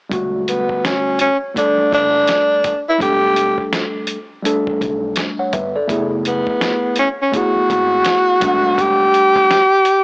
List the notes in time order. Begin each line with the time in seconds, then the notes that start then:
0.10 E1 D3 G3 A3 F#4, kick, closed hi-hat
0.48 B3, closed hi-hat
0.69 kick
0.85 C#4, snare, closed hi-hat
1.19 C#4, closed hi-hat
1.54 G3 A3 D4 A4, kick, closed hi-hat
1.78 muted upright bass stroke
1.92 F#1 D4, kick, closed hi-hat
2.27 snare, closed hi-hat
2.64 kick, closed hi-hat
2.89 E4
2.98 E1 G3 A3 D4 A4, kick, closed hi-hat
3.03 G4
3.36 closed hi-hat
3.58 kick
3.73 snare, closed hi-hat
4.07 closed hi-hat
4.43 G3 A3 D4 A4, closed hi-hat
4.67 muted upright bass stroke, kick
4.81 B1, kick, closed hi-hat
5.16 snare, closed hi-hat
5.39 C#5 F#5
5.53 G1 B4 E5, kick, closed hi-hat
5.76 A4 D5
5.88 F#1 A3 B3 E4 G#4, kick, closed hi-hat
6.25 B3, closed hi-hat
6.47 kick
6.61 snare, closed hi-hat
6.96 C#4, closed hi-hat
7.22 C#4
7.32 A3 B3 E4 G#4, kick, closed hi-hat
7.37 F#4
7.56 muted upright bass stroke
7.70 G#1, kick, closed hi-hat
8.05 snare, closed hi-hat
8.40 E1 G3 A3 D4 F#5, kick, closed hi-hat
8.78 G4, kick, closed hi-hat
9.14 closed hi-hat
9.36 kick
9.51 snare, closed hi-hat
9.85 closed hi-hat